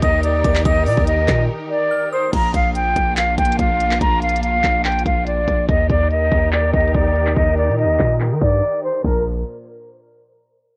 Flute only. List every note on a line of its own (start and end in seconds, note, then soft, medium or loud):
0.02 0.21 D#5 loud
0.23 0.63 D5 medium
0.65 0.84 D#5 loud
0.86 1.05 D5 medium
1.07 1.43 D#5 medium
1.70 2.09 D5 medium
2.12 2.31 C5 medium
2.34 2.52 A#5 loud
2.55 2.73 F5 medium
2.75 3.14 G5 medium
3.17 3.36 F5 medium
3.38 3.57 G5 medium
3.59 3.98 F5 medium
4.01 4.20 A#5 loud
4.22 4.41 F5 medium
4.43 4.82 F5 medium
4.84 5.03 G5 medium
5.06 5.25 F5 medium
5.27 5.66 D5 medium
5.69 5.88 D#5 medium
5.90 6.09 D5 medium
6.11 6.50 D#5 medium
6.53 6.71 D5 medium
6.73 6.92 D#5 medium
6.95 7.34 D5 medium
7.36 7.55 D#5 loud
7.57 7.76 D5 medium
7.78 8.15 D#5 medium
8.41 8.81 D5 medium
8.84 9.02 C5 medium
9.04 9.24 A#4 medium